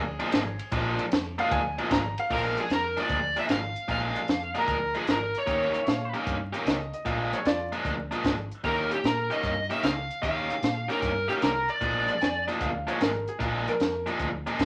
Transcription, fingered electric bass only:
Already playing: D2
0.34 G#1
0.72 A#1
1.12 F2
1.51 D2
1.91 G#1
2.30 A#1
2.70 F2
3.10 D2
3.49 G#1
3.89 A#1
4.29 F2
4.68 D2
5.08 G#1
5.47 D#2
5.87 A#2
6.27 G2
6.66 C#2
7.06 A#1
7.45 F2
7.85 D2
8.24 G#1
8.64 D#2
9.04 A#2
9.43 G2
9.83 C#2
10.23 D#2
10.62 A#2
11.02 G2
11.42 C2
11.81 A#1
12.21 F2
12.61 D2
13.01 G#1
13.40 A#1
13.80 F2
14.20 D2
14.60 G#1

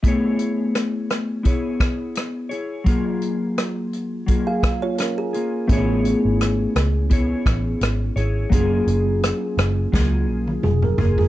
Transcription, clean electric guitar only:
0.03 A3 B3 E4 G#4
0.08 C#5
1.43 B3 E4 G#4 C#5
2.49 E4 G#4 C#5
2.84 F#3 A#3 F4
2.89 G#4
4.26 F#3 A#3 F4 G#4
5.33 A#3 F4 G#4
5.67 A3 B3 E4
5.72 G#4 C#5
7.10 B3 E4 G#4 C#5
8.16 E4 G#4 C#5
8.50 F#3 A#3 F4
8.54 G#4
9.92 F#3 A#3 F4 G#4
10.98 A#3 F4 G#4

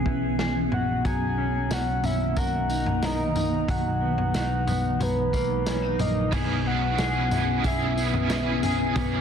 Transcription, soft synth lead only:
0.73 F#5
1.06 G#5
1.73 F#5
2.05 E5
2.38 F#5
3.05 D#5
3.70 F#5
5.02 B4
6.00 D#5
6.33 G#5
6.67 F#5
7.67 E5

